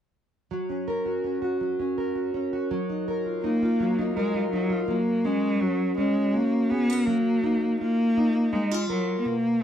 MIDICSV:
0, 0, Header, 1, 3, 480
1, 0, Start_track
1, 0, Key_signature, 6, "major"
1, 0, Tempo, 729040
1, 331, Time_signature, 6, 3, 24, 8
1, 6342, End_track
2, 0, Start_track
2, 0, Title_t, "Steel-string acoustic guitar"
2, 0, Program_c, 0, 25
2, 336, Note_on_c, 0, 54, 49
2, 458, Note_on_c, 0, 61, 30
2, 577, Note_on_c, 0, 70, 40
2, 694, Note_on_c, 0, 66, 37
2, 810, Note_off_c, 0, 61, 0
2, 818, Note_on_c, 0, 61, 34
2, 932, Note_off_c, 0, 66, 0
2, 934, Note_on_c, 0, 66, 37
2, 1056, Note_off_c, 0, 54, 0
2, 1058, Note_on_c, 0, 54, 47
2, 1174, Note_off_c, 0, 61, 0
2, 1181, Note_on_c, 0, 61, 34
2, 1300, Note_off_c, 0, 70, 0
2, 1303, Note_on_c, 0, 70, 39
2, 1416, Note_off_c, 0, 66, 0
2, 1419, Note_on_c, 0, 66, 39
2, 1533, Note_off_c, 0, 61, 0
2, 1541, Note_on_c, 0, 61, 40
2, 1663, Note_off_c, 0, 66, 0
2, 1665, Note_on_c, 0, 66, 43
2, 1781, Note_off_c, 0, 54, 0
2, 1783, Note_on_c, 0, 54, 56
2, 1824, Note_off_c, 0, 61, 0
2, 1906, Note_on_c, 0, 63, 41
2, 2025, Note_off_c, 0, 70, 0
2, 2028, Note_on_c, 0, 70, 44
2, 2143, Note_off_c, 0, 66, 0
2, 2145, Note_on_c, 0, 65, 36
2, 2256, Note_off_c, 0, 63, 0
2, 2264, Note_on_c, 0, 63, 43
2, 2378, Note_off_c, 0, 65, 0
2, 2386, Note_on_c, 0, 65, 41
2, 2499, Note_off_c, 0, 54, 0
2, 2502, Note_on_c, 0, 54, 54
2, 2618, Note_off_c, 0, 63, 0
2, 2624, Note_on_c, 0, 63, 39
2, 2741, Note_off_c, 0, 70, 0
2, 2743, Note_on_c, 0, 70, 46
2, 2851, Note_off_c, 0, 65, 0
2, 2859, Note_on_c, 0, 65, 41
2, 2974, Note_off_c, 0, 63, 0
2, 2982, Note_on_c, 0, 63, 43
2, 3085, Note_off_c, 0, 65, 0
2, 3093, Note_on_c, 0, 65, 45
2, 3209, Note_off_c, 0, 54, 0
2, 3212, Note_on_c, 0, 54, 58
2, 3259, Note_off_c, 0, 65, 0
2, 3264, Note_off_c, 0, 63, 0
2, 3454, Note_on_c, 0, 61, 46
2, 3691, Note_on_c, 0, 66, 46
2, 3928, Note_off_c, 0, 61, 0
2, 3936, Note_on_c, 0, 61, 39
2, 4176, Note_off_c, 0, 66, 0
2, 4178, Note_on_c, 0, 66, 43
2, 4415, Note_off_c, 0, 70, 0
2, 4418, Note_on_c, 0, 68, 47
2, 4541, Note_off_c, 0, 68, 0
2, 4541, Note_on_c, 0, 70, 48
2, 4652, Note_off_c, 0, 54, 0
2, 4655, Note_on_c, 0, 54, 59
2, 4700, Note_off_c, 0, 61, 0
2, 4703, Note_off_c, 0, 70, 0
2, 4894, Note_on_c, 0, 63, 46
2, 5140, Note_off_c, 0, 66, 0
2, 5142, Note_on_c, 0, 65, 43
2, 5378, Note_off_c, 0, 63, 0
2, 5381, Note_on_c, 0, 63, 45
2, 5612, Note_off_c, 0, 65, 0
2, 5614, Note_off_c, 0, 63, 0
2, 5614, Note_on_c, 0, 63, 45
2, 5737, Note_off_c, 0, 63, 0
2, 5737, Note_on_c, 0, 65, 40
2, 5857, Note_on_c, 0, 70, 47
2, 6091, Note_on_c, 0, 47, 63
2, 6140, Note_off_c, 0, 65, 0
2, 6140, Note_off_c, 0, 70, 0
2, 6342, Note_off_c, 0, 47, 0
2, 6342, Note_off_c, 0, 54, 0
2, 6342, End_track
3, 0, Start_track
3, 0, Title_t, "Cello"
3, 0, Program_c, 1, 42
3, 2261, Note_on_c, 1, 58, 75
3, 2709, Note_off_c, 1, 58, 0
3, 2736, Note_on_c, 1, 56, 62
3, 2957, Note_off_c, 1, 56, 0
3, 2973, Note_on_c, 1, 54, 64
3, 3195, Note_off_c, 1, 54, 0
3, 3216, Note_on_c, 1, 58, 65
3, 3460, Note_on_c, 1, 56, 67
3, 3470, Note_off_c, 1, 58, 0
3, 3700, Note_on_c, 1, 54, 67
3, 3710, Note_off_c, 1, 56, 0
3, 3928, Note_off_c, 1, 54, 0
3, 3932, Note_on_c, 1, 56, 70
3, 4176, Note_on_c, 1, 58, 73
3, 4186, Note_off_c, 1, 56, 0
3, 4412, Note_on_c, 1, 59, 88
3, 4422, Note_off_c, 1, 58, 0
3, 4650, Note_on_c, 1, 58, 81
3, 4660, Note_off_c, 1, 59, 0
3, 5129, Note_off_c, 1, 58, 0
3, 5139, Note_on_c, 1, 58, 95
3, 5616, Note_on_c, 1, 56, 76
3, 5626, Note_off_c, 1, 58, 0
3, 5851, Note_off_c, 1, 56, 0
3, 5856, Note_on_c, 1, 54, 72
3, 6032, Note_off_c, 1, 54, 0
3, 6057, Note_on_c, 1, 59, 56
3, 6102, Note_on_c, 1, 58, 76
3, 6112, Note_off_c, 1, 59, 0
3, 6342, Note_off_c, 1, 58, 0
3, 6342, End_track
0, 0, End_of_file